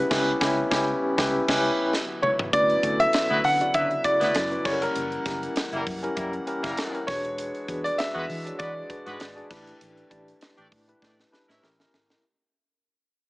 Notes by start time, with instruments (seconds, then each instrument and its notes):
Already playing: pipe organ C#3 G3 B3 E4, tine electric piano C#4 E4 G4 B4, grand piano F#5
0.10 fingered electric bass C#2, tine electric piano C#4 E4 G4 B4, kick, snare, crash
0.41 fingered electric bass C#2, tine electric piano C#4 E4 G4, kick, snare
0.71 fingered electric bass C#2, tine electric piano C#4 E4 G4, kick, snare
1.17 fingered electric bass C#2, tine electric piano C#4 E4 G4 B4, kick, snare
1.48 fingered electric bass C#2, tine electric piano C#4 E4 G4 B4, kick, snare, crash
1.93 pipe organ D3 F#3 B3, snare
2.22 grand piano C#5, mid tom
2.39 floor tom
2.53 fingered electric bass D2, pipe organ B2 F#3 B3 E4, tine electric piano C#4 E4 F#4 B4, grand piano D5, kick, closed hi-hat
2.70 closed hi-hat
2.83 fingered electric bass D2, tine electric piano C#4 E4 F#4 A4, kick, closed hi-hat
3.00 grand piano E5, closed hi-hat
3.13 snare, closed hi-hat
3.30 fingered electric bass D2, horn section F#3 B3 E4 B4
3.44 fingered electric bass D3, grand piano F#5, open hi-hat
3.60 tine electric piano C#3 E4 F#4 D5, closed hi-hat
3.74 fingered electric bass D3, horn section F#3 B3 E4 B4, grand piano E5, kick, closed hi-hat
3.91 closed hi-hat
4.04 tine electric piano C#3 E4 F#4 D5, grand piano D5, kick, closed hi-hat
4.20 fingered electric bass D2, horn section F#3 B3 E4 B4, snare, closed hi-hat
4.35 fingered electric bass F#2, snare, closed hi-hat
4.51 tine electric piano C#4 E4 F#4 B4, closed hi-hat
4.65 fingered electric bass F#1, pipe organ E3 G3 A#3 F#5, tine electric piano C#4 E4 G4 A4, grand piano C#5, kick, snare, crash
4.72 tine electric piano A#4
4.82 grand piano A#4, closed hi-hat
4.96 fingered electric bass F#1, closed hi-hat
5.12 closed hi-hat
5.25 fingered electric bass F#1, tine electric piano C#4 E4 G4 A#4, kick, snare, closed hi-hat
5.43 closed hi-hat
5.56 snare, closed hi-hat
5.72 fingered electric bass F#1, horn section G3 A#3 E4 A#4, closed hi-hat
5.87 fingered electric bass F#2, kick, open hi-hat
6.02 tine electric piano C#4 E4 G4 A#4, closed hi-hat
6.16 fingered electric bass F#2, horn section G3 A#3 E4 A#4, kick, closed hi-hat
6.33 closed hi-hat
6.47 tine electric piano C#4 E4 G4 A#4, closed hi-hat
6.63 fingered electric bass F#1, horn section G3 A#3 E4 A#4, kick, snare, closed hi-hat
6.77 snare, closed hi-hat
6.93 tine electric piano C#4 E4 G4 A#4, closed hi-hat
7.07 fingered electric bass E1, pipe organ G#3 D4 F#4, tine electric piano D4 F#4 G#4 B4, grand piano C#5, kick, snare, open hi-hat
7.25 closed hi-hat
7.38 closed hi-hat
7.55 closed hi-hat
7.68 fingered electric bass E2, tine electric piano D4 F#4 G#4 B4, kick, closed hi-hat
7.84 grand piano D5, closed hi-hat
7.98 grand piano E5, snare, closed hi-hat
8.14 fingered electric bass E2, horn section G#3 B3 F#4 B4
8.29 fingered electric bass E3, open hi-hat
8.45 tine electric piano D4 F#4 G#4 C#5, closed hi-hat
8.59 fingered electric bass E3, horn section G#3 B3 F#4 B4, grand piano D5, kick, closed hi-hat
8.89 tine electric piano D4 F#4 G#4 B4, kick, closed hi-hat
9.06 fingered electric bass G#2, horn section G#3 B3 F#4 B4, closed hi-hat
9.20 fingered electric bass G#1, snare, closed hi-hat
9.36 tine electric piano D4 F#4 G#4 D5, closed hi-hat
9.50 fingered electric bass A1, pipe organ A3 G4, tine electric piano D4 E4 G4 B4, kick, snare, crash
9.67 closed hi-hat
9.81 fingered electric bass A1, closed hi-hat
9.97 closed hi-hat
10.10 fingered electric bass A1, tine electric piano D4 E4 G4 D5, kick, closed hi-hat
10.28 closed hi-hat
10.41 snare, closed hi-hat
10.58 fingered electric bass A1, horn section A3 D4 G4 D5, closed hi-hat
10.72 fingered electric bass A2, kick, open hi-hat
10.88 tine electric piano D4 E4 G4 B4, closed hi-hat
11.02 fingered electric bass A2, horn section A3 D4 G4 D5, kick, snare
11.20 snare
11.32 tine electric piano D4 E4 G4 B4, snare
11.48 fingered electric bass A2, horn section C#4 E4 A#4 E5, snare
11.62 fingered electric bass A1, pipe organ C#3 A3 A#3, tine electric piano C#4 E4 G4 A#4, snare
11.79 tine electric piano C#4 E4 G4 A#4, snare
11.93 fingered electric bass G#1, snare
12.10 snare